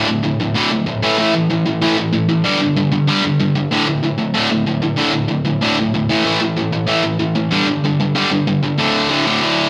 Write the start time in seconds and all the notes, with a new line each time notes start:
0.08 D2 A2
0.23 D2 A2
0.41 D2 A2
0.55 D2 A2 D3
0.71 D2 A2
0.86 D2 A2
1.03 A2 E3 A3
1.19 A2 E3 A3
1.35 A2 E3
1.50 A2 E3
1.66 A2 E3
1.82 A2 E3 A3
1.98 A2 E3
2.13 A2 E3
2.29 A2 E3
2.44 G2 D3 G3
2.61 G2 D3
2.76 G2 D3
2.92 G2 D3
3.07 G2 D3 G3
3.24 G2 D3
3.40 G2 D3
3.55 G2 D3
3.71 D2 A2 D3
3.88 D2 A2
4.03 D2 A2
4.18 D2 A2
4.34 D2 A2 D3
4.51 D2 A2
4.67 D2 A2
4.83 D2 A2
4.97 D2 A2 D3
5.13 D2 A2
5.29 D2 A2
5.45 D2 A2
5.62 D2 A2 D3
5.79 D2 A2
5.94 D2 A2
6.09 A2 E3 A3
6.25 A2 E3 A3
6.41 A2 E3
6.57 A2 E3
6.73 A2 E3
6.87 A2 E3 A3
7.04 A2 E3
7.19 A2 E3
7.35 A2 E3
7.51 G2 D3 G3
7.67 G2 D3
7.84 G2 D3
8.00 G2 D3
8.15 G2 D3 G3
8.31 G2 D3
8.47 G2 D3
8.63 G2 D3
8.78 D2 A2 D3
9.10 D2 A2 D3
9.26 D2 A2 D3
9.42 D2 A2 D3